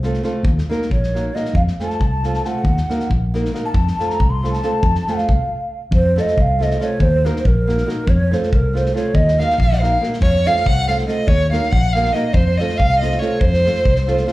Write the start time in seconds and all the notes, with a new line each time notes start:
Already playing: C2
0.03 A3 C4 F4 A4, snare
0.14 snare
0.23 A3 C4 F4 A4, snare
0.43 D#2, kick
0.58 snare
0.69 A#3 D#4 F#4 A#4, snare
0.82 snare
0.90 A#1 C#5, kick
1.03 snare
1.14 A#3 D#4 F#4 A#4, snare
1.34 A#3 D#4 F#4 A#4 D#5, snare
1.45 snare
1.54 F2 F5, kick
1.67 snare
1.80 A3 C4 F4 A4 A5, snare
1.90 snare
2.00 C2, kick
2.24 A3 C4 F4 A4, snare
2.34 snare
2.44 A3 C4 F4 A4 F#5, snare
2.64 D#2, kick
2.77 snare
2.89 A#3 D#4 F#4 A#4, snare
3.00 snare
3.10 A#1, kick
3.34 A#3 D#4 F#4 A#4, snare
3.45 snare
3.54 A#3 D#4 F#4 A#4, snare
3.65 A5
3.74 F2, kick
3.87 snare
3.99 A3 C4 F4 A4, snare
4.08 A#5, snare
4.20 C2, kick
4.30 C6
4.43 A3 C4 F4 A4, snare
4.52 A5, snare
4.63 A3 C4 F4 A4, snare
4.83 F2, kick
4.95 snare
5.07 A3 C4 F4 A4, snare
5.17 F5, snare
5.29 C2, kick
5.91 F2 C5, kick
6.16 A3 C4 F4 A4, snare
6.20 D#5
6.27 snare
6.37 C2 F5, kick
6.59 A3 C4 F4 A4 D#5, snare
6.71 snare
6.79 A3 C4 F4 A4 C#5, snare
6.99 D#2 C5, kick
7.24 A#3 D#4 F#4 A#4, snare
7.36 C5, snare
7.45 A#1 A#4, kick
7.67 A#3 D#4 F#4 A#4, snare
7.78 snare
7.86 A#3 D#4 F#4 A#4, snare
8.07 F2 C#5, kick
8.31 A3 C4 F4 A4 C5, snare
8.43 snare
8.52 C2 A#4, kick
8.73 A3 C4 F4 A4 C5, snare
8.86 snare
8.94 A3 C4 F4 A4 C#5, snare
9.14 D#2 D#5, kick
9.28 snare
9.38 A#3 D#4 F#4 A#4 F5, snare
9.50 snare
9.58 A#1 F5, kick
9.70 F#5, snare
9.80 A#3 D#4 F#4 A#4 F5, snare
10.01 A#3 D#4 F#4 A#4, snare
10.13 snare
10.21 F2 C#5, kick
10.46 A3 C4 F4 A4 F5, snare
10.57 snare
10.65 C2 F#5, kick
10.87 A3 C4 F4 A4 F5, snare
10.98 snare
11.07 A3 C4 F4 A4 D#5, snare
11.27 D#2 C#5, kick
11.51 A#3 D#4 F#4 A#4 F5, snare
11.63 snare
11.71 A#1 F#5, kick
11.93 A#3 D#4 F#4 F5, snare
11.97 A#4
12.05 snare
12.12 A#3 D#4 F#4 A#4 D#5, snare
12.33 F2 C5, kick
12.57 A3 C4 F4 A4 D#5, snare
12.69 snare
12.77 C2 F5, kick
13.00 A3 C4 F4 A4 D#5, snare
13.11 snare
13.19 A3 C4 F4 C#5, snare
13.23 A4
13.39 F2 C5, kick
13.53 snare
13.65 A3 C4 F4 A4, snare
13.75 snare
13.85 C2, kick
13.96 snare
14.07 A3 C4 F4 A4, snare
14.17 snare
14.26 A3 C4 F4 A4, snare